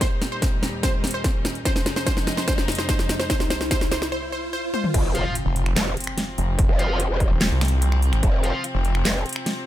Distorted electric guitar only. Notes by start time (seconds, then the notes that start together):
5.15 F4 C5 F5
5.25 F4 C5 F5
6.79 F4 C5 F5
6.89 F4 C5 F5
8.43 F4 C5 F5
8.54 F4 C5 F5